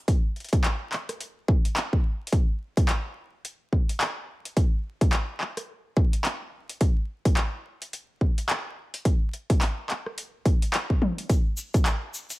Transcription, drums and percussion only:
0.08 kick loud
0.08 closed hi-hat medium
0.36 closed hi-hat soft
0.40 closed hi-hat soft
0.44 closed hi-hat soft
0.49 closed hi-hat soft
0.53 kick loud
0.53 closed hi-hat medium
0.64 clap loud
0.64 closed hi-hat medium
0.92 clap medium
0.92 closed hi-hat soft
1.09 cross-stick soft
1.09 closed hi-hat medium
1.20 closed hi-hat medium
1.48 kick loud
1.65 closed hi-hat soft
1.77 clap loud
1.77 closed hi-hat medium
1.93 kick medium
2.27 closed hi-hat medium
2.32 kick loud
2.32 closed hi-hat medium
2.77 kick loud
2.77 closed hi-hat soft
2.89 clap loud
2.89 closed hi-hat medium
3.45 closed hi-hat medium
3.73 kick medium
3.89 closed hi-hat soft
4.01 clap loud
4.01 closed hi-hat medium
4.45 closed hi-hat medium
4.57 kick loud
4.57 closed hi-hat medium
5.01 kick loud
5.01 closed hi-hat medium
5.13 clap loud
5.13 closed hi-hat medium
5.41 clap medium
5.57 cross-stick soft
5.57 closed hi-hat medium
5.97 kick loud
6.13 closed hi-hat soft
6.25 clap loud
6.25 closed hi-hat medium
6.69 closed hi-hat medium
6.81 kick loud
6.81 closed hi-hat medium
7.25 kick loud
7.25 closed hi-hat medium
7.37 clap loud
7.37 closed hi-hat medium
7.82 closed hi-hat medium
7.93 closed hi-hat medium
8.21 kick medium
8.38 closed hi-hat soft
8.49 clap loud
8.49 closed hi-hat medium
8.94 closed hi-hat medium
9.05 kick loud
9.05 closed hi-hat medium
9.33 closed hi-hat soft
9.50 kick loud
9.50 closed hi-hat medium
9.62 clap loud
9.62 closed hi-hat medium
9.90 clap medium
9.90 closed hi-hat soft
10.06 cross-stick soft
10.18 closed hi-hat medium
10.45 kick loud
10.45 closed hi-hat soft
10.62 closed hi-hat medium
10.74 clap loud
10.74 closed hi-hat medium
10.90 kick medium
11.02 high tom medium
11.18 closed hi-hat medium
11.30 kick loud
11.30 closed hi-hat medium
11.30 shaker soft
11.57 shaker loud
11.74 kick loud
11.74 closed hi-hat medium
11.74 shaker soft
11.86 clap loud
11.86 closed hi-hat medium
11.86 shaker soft
12.14 shaker medium
12.30 closed hi-hat medium
12.30 shaker medium

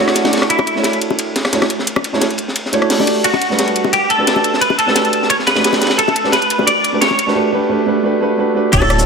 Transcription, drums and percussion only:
0.08 cross-stick soft
0.08 snare loud
0.08 ride medium
0.15 snare loud
0.15 closed hi-hat medium
0.15 ride medium
0.25 snare loud
0.25 ride medium
0.25 high bongo soft
0.33 snare medium
0.33 closed hi-hat medium
0.33 ride medium
0.37 snare medium
0.37 ride medium
0.41 cross-stick soft
0.41 snare loud
0.41 ride medium
0.50 closed hi-hat medium
0.50 ride medium
0.59 cross-stick soft
0.59 ride soft
0.59 high bongo medium
0.67 closed hi-hat medium
0.67 ride medium
0.76 snare soft
0.84 snare loud
0.84 closed hi-hat medium
0.84 ride medium
0.93 closed hi-hat soft
0.93 ride soft
1.01 closed hi-hat medium
1.01 ride medium
1.10 high bongo medium
1.19 closed hi-hat medium
1.19 ride medium
1.36 snare medium
1.36 closed hi-hat medium
1.36 ride medium
1.45 cross-stick soft
1.45 snare loud
1.45 ride medium
1.53 snare loud
1.53 closed hi-hat medium
1.53 ride medium
1.62 cross-stick soft
1.62 snare loud
1.62 ride medium
1.62 high bongo medium
1.70 closed hi-hat medium
1.70 ride medium
1.79 snare medium
1.87 closed hi-hat medium
1.87 ride medium
1.96 cross-stick soft
1.96 high bongo medium
2.04 closed hi-hat medium
2.04 ride medium
2.14 snare medium
2.21 snare loud
2.21 closed hi-hat medium
2.21 ride medium
2.31 closed hi-hat soft
2.38 closed hi-hat medium
2.38 ride medium
2.48 snare medium
2.56 closed hi-hat medium
2.56 ride medium
2.66 snare soft
2.73 closed hi-hat medium
2.73 ride medium
2.82 cross-stick soft
2.82 ride soft
2.90 snare loud
2.90 closed hi-hat medium
2.90 open hi-hat medium
3.00 snare soft
3.00 high bongo medium
3.07 closed hi-hat medium
3.07 ride medium
3.24 closed hi-hat medium
3.24 ride medium
3.34 ride soft
3.34 high bongo medium
3.41 closed hi-hat medium
3.41 ride medium
3.51 snare soft
3.59 snare loud
3.59 closed hi-hat medium
3.59 ride medium
3.67 closed hi-hat soft
3.67 ride soft
3.76 closed hi-hat medium
3.76 ride medium
3.84 high bongo medium
3.93 closed hi-hat medium
3.93 ride medium
4.10 closed hi-hat medium
4.10 ride medium
4.27 snare loud
4.27 closed hi-hat medium
4.27 ride medium
4.36 high bongo soft
4.44 closed hi-hat medium
4.44 ride medium
4.54 snare medium
4.62 closed hi-hat medium
4.62 ride medium
4.70 high bongo medium
4.79 closed hi-hat medium
4.79 ride medium
4.88 snare medium
4.96 snare loud
4.96 closed hi-hat medium
4.96 ride medium
5.05 closed hi-hat soft
5.13 closed hi-hat medium
5.13 ride medium
5.23 snare soft
5.30 closed hi-hat medium
5.30 ride loud
5.39 snare soft
5.47 snare loud
5.47 closed hi-hat medium
5.47 ride medium
5.56 snare loud
5.56 ride medium
5.64 snare loud
5.64 closed hi-hat medium
5.64 ride medium
5.73 snare loud
5.73 ride medium
5.73 high bongo soft
5.81 snare medium
5.81 closed hi-hat medium
5.81 ride medium
5.86 snare medium
5.86 ride medium
5.90 snare loud
5.90 ride medium
5.99 closed hi-hat loud
5.99 ride loud
6.08 ride soft
6.08 high bongo medium
6.16 closed hi-hat medium
6.16 ride medium
6.24 snare soft
6.32 snare loud
6.32 closed hi-hat medium
6.32 ride medium
6.42 closed hi-hat soft
6.42 ride soft
6.50 closed hi-hat medium
6.50 ride medium
6.59 high bongo medium
6.67 closed hi-hat loud
6.67 ride medium
6.84 closed hi-hat medium
6.84 ride medium
7.01 snare loud
7.01 closed hi-hat medium
7.01 ride medium
7.11 high bongo soft
7.19 closed hi-hat medium
7.19 ride medium
7.28 snare soft
8.73 kick loud
8.73 closed hi-hat loud
8.73 ride medium
8.73 crash loud
8.73 shaker soft
8.82 cross-stick soft
8.82 ride soft
8.82 high bongo medium
8.90 cross-stick medium
8.90 closed hi-hat medium
8.90 ride medium
8.90 shaker soft
8.99 snare soft
8.99 shaker medium

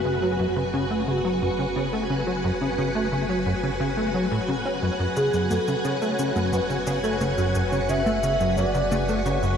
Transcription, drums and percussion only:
5.16 cabasa medium
5.33 cabasa soft
5.51 high conga soft
5.51 cabasa medium
5.68 cabasa soft
5.85 cabasa medium
6.02 cabasa soft
6.19 cabasa medium
6.36 high conga soft
6.36 cabasa soft
6.53 cabasa medium
6.70 cabasa soft
6.87 cabasa medium
7.04 cabasa soft
7.21 high conga soft
7.21 cabasa medium
7.38 cabasa soft
7.55 cabasa medium
7.72 cabasa soft
7.89 cabasa medium
8.06 high conga soft
8.06 cabasa soft
8.23 cabasa medium
8.40 cabasa soft
8.57 cabasa medium
8.75 cabasa soft
8.92 high conga soft
8.92 cabasa medium
9.09 cabasa soft
9.26 cabasa medium
9.43 cabasa soft

